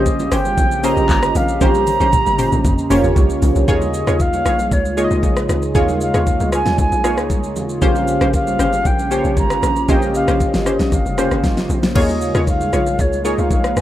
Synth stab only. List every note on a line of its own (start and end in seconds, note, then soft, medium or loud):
0.32 0.43 C#4 medium
0.32 0.43 G4 medium
0.32 0.43 C5 medium
0.83 0.95 C#4 medium
0.83 0.95 G4 medium
0.83 0.95 C5 medium
1.61 1.97 C#4 loud
1.61 1.97 G4 medium
1.61 1.97 C5 loud
2.00 2.11 C#4 medium
2.00 2.11 G4 medium
2.00 2.11 C5 medium
2.38 2.50 C#4 medium
2.38 2.50 G4 medium
2.38 2.50 C5 medium
2.90 3.02 C#4 medium
2.90 3.02 G4 medium
2.90 3.02 C5 medium
3.68 4.04 F4 loud
3.68 4.04 G#4 medium
3.68 4.04 C#5 loud
4.07 4.18 F4 medium
4.07 4.18 G#4 medium
4.07 4.18 C#5 medium
4.45 4.57 F4 medium
4.45 4.57 G#4 medium
4.45 4.57 C#5 medium
4.97 5.08 F4 medium
4.97 5.09 G#4 medium
4.97 5.09 C#5 medium
5.75 6.11 F4 loud
5.75 6.11 G#4 medium
5.75 6.11 C#5 loud
6.14 6.25 F4 medium
6.14 6.25 G#4 medium
6.14 6.25 C#5 medium
6.52 6.64 F4 medium
6.52 6.64 G#4 medium
6.52 6.64 C#5 medium
7.04 7.15 F4 medium
7.04 7.16 G#4 medium
7.04 7.16 C#5 medium
7.82 8.18 C#4 loud
7.82 8.18 G4 medium
7.82 8.18 C5 loud
8.21 8.31 C#4 medium
8.21 8.32 G4 medium
8.21 8.32 C5 medium
8.59 8.71 C#4 medium
8.59 8.71 G4 medium
8.59 8.71 C5 medium
9.11 9.22 C#4 medium
9.11 9.22 G4 medium
9.11 9.23 C5 medium
9.88 10.25 C#4 loud
9.88 10.25 G4 medium
9.88 10.25 C5 loud
10.28 10.38 C#4 medium
10.28 10.38 G4 medium
10.28 10.39 C5 medium
10.66 10.77 C#4 medium
10.66 10.78 G4 medium
10.66 10.78 C5 medium
11.18 11.29 C#4 medium
11.18 11.29 G4 medium
11.18 11.29 C5 medium
11.95 12.32 F4 medium
11.95 12.32 G#4 medium
11.95 12.32 C#5 loud
12.35 12.45 F4 medium
12.35 12.45 G#4 medium
12.35 12.45 C#5 medium
12.73 12.84 F4 medium
12.73 12.84 G#4 medium
12.73 12.85 C#5 medium
13.25 13.36 F4 medium
13.25 13.36 G#4 medium
13.25 13.36 C#5 medium